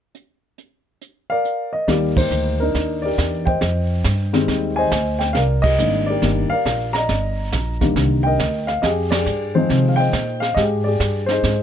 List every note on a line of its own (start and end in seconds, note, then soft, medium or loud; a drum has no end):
0.15 closed hi-hat soft
0.58 closed hi-hat soft
1.01 closed hi-hat medium
1.30 1.88 A#4 medium
1.30 1.86 D5 medium
1.30 1.70 F5 medium
1.45 closed hi-hat soft
1.73 1.88 D#5 medium
1.88 2.30 D#2 medium
1.88 2.54 D#3 medium
1.88 2.54 G3 medium
1.88 2.55 A#3 medium
1.88 2.18 G4 medium
1.88 2.58 A#4 medium
1.88 2.14 D5 medium
1.88 brush sweep soft
1.88 kick soft
1.88 snare soft
2.17 2.61 D#4 soft
2.17 3.01 G4 medium
2.17 2.61 C5 medium
2.17 kick medium
2.17 ride medium
2.31 2.73 D2 medium
2.31 hi-hat pedal soft
2.60 3.44 D4 medium
2.60 3.44 D#4 medium
2.60 3.00 A#4 medium
2.75 3.17 D#2 medium
2.75 brush sweep soft
2.75 kick soft
2.75 snare soft
3.02 3.58 G4 medium
3.02 3.58 A#4 medium
3.02 3.43 D5 medium
3.18 3.60 E2 medium
3.18 kick soft
3.18 snare soft
3.18 hi-hat pedal soft
3.45 4.73 C5 medium
3.45 4.74 D#5 medium
3.45 4.80 G5 medium
3.45 kick soft
3.61 4.03 F2 medium
3.61 brush sweep soft
3.61 kick soft
3.61 snare soft
4.04 4.47 G2 medium
4.04 kick soft
4.04 snare soft
4.04 hi-hat pedal soft
4.33 4.88 D#3 medium
4.33 4.89 G3 medium
4.33 4.89 G#3 medium
4.33 4.89 C4 medium
4.33 snare soft
4.48 4.90 D#2 medium
4.48 brush sweep soft
4.48 kick soft
4.48 snare soft
4.76 5.32 C5 medium
4.76 5.32 D#5 medium
4.76 5.21 G#5 medium
4.91 5.34 D2 medium
4.91 kick soft
4.91 snare medium
4.91 hi-hat pedal medium
5.19 5.35 G5 medium
5.19 snare soft
5.33 5.77 C2 medium
5.33 5.63 A#4 medium
5.33 6.05 D5 medium
5.33 5.40 F5 medium
5.33 brush sweep soft
5.33 kick soft
5.33 snare soft
5.62 6.08 G4 medium
5.62 6.08 A#4 medium
5.62 6.03 D#5 loud
5.62 kick medium
5.62 ride medium
5.79 6.21 G#1 medium
5.79 6.21 D#3 soft
5.79 6.21 G3 soft
5.79 6.21 A#3 soft
5.79 6.21 D4 medium
5.79 hi-hat pedal soft
6.06 6.91 G4 medium
6.06 6.51 A#4 medium
6.06 6.52 D5 medium
6.22 6.49 G1 medium
6.22 6.48 D#3 medium
6.22 6.48 G3 soft
6.22 6.49 A#3 soft
6.22 6.49 D4 medium
6.22 brush sweep soft
6.22 kick soft
6.22 snare soft
6.50 7.35 A#4 medium
6.50 6.94 D5 medium
6.50 6.91 F5 medium
6.50 muted upright bass stroke soft
6.65 7.08 A#1 medium
6.65 kick soft
6.65 snare soft
6.65 hi-hat pedal soft
6.93 8.21 D5 medium
6.93 8.22 D#5 medium
6.93 8.20 A#5 loud
6.93 snare soft
7.09 7.51 G1 medium
7.09 brush sweep soft
7.09 kick soft
7.09 snare soft
7.52 7.95 A#1 medium
7.52 kick soft
7.52 snare soft
7.52 hi-hat pedal medium
7.81 8.37 D3 medium
7.81 8.36 D#3 medium
7.81 8.37 G3 soft
7.81 8.37 A#3 soft
7.81 kick soft
7.81 snare soft
7.96 8.38 C2 medium
7.96 brush sweep soft
7.96 kick soft
7.96 snare soft
8.23 8.80 A#4 medium
8.23 8.80 D#5 medium
8.23 8.69 G5 medium
8.39 8.81 D2 medium
8.39 kick soft
8.39 snare soft
8.39 hi-hat pedal soft
8.67 8.83 F5 medium
8.67 snare soft
8.82 9.25 F2 medium
8.82 9.12 G4 medium
8.82 9.12 G#4 medium
8.82 8.89 D#5 medium
8.82 brush sweep soft
8.82 kick soft
8.82 snare soft
9.10 9.95 G4 medium
9.10 9.56 G#4 medium
9.10 9.56 D5 medium
9.10 snare medium
9.10 ride medium
9.26 9.68 G2 medium
9.26 hi-hat pedal medium
9.55 10.10 D#3 medium
9.55 10.10 F3 medium
9.55 10.10 G#3 medium
9.55 10.11 C4 medium
9.55 10.39 D#4 medium
9.55 10.39 G#4 medium
9.55 9.90 C5 medium
9.69 10.12 C3 medium
9.69 brush sweep soft
9.69 kick soft
9.69 snare soft
9.89 9.98 F5 medium
9.96 10.53 D#5 medium
9.96 10.42 G5 loud
10.00 10.82 C5 medium
10.13 10.55 A#2 medium
10.13 kick soft
10.13 snare medium
10.13 hi-hat pedal soft
10.40 10.56 F5 medium
10.40 snare soft
10.54 10.99 G#2 medium
10.54 10.86 G4 medium
10.54 10.86 G#4 medium
10.54 10.61 D#5 medium
10.54 brush sweep soft
10.54 kick soft
10.54 snare soft
10.84 11.63 G4 medium
10.84 11.29 G#4 medium
10.84 11.25 D5 medium
11.00 11.42 G2 medium
11.00 kick soft
11.00 snare medium
11.00 hi-hat pedal soft
11.26 11.63 C5 medium
11.26 snare soft
11.30 11.63 D#4 medium
11.30 11.63 G#4 medium
11.43 11.63 G#2 medium
11.43 brush sweep soft
11.43 kick soft
11.43 snare soft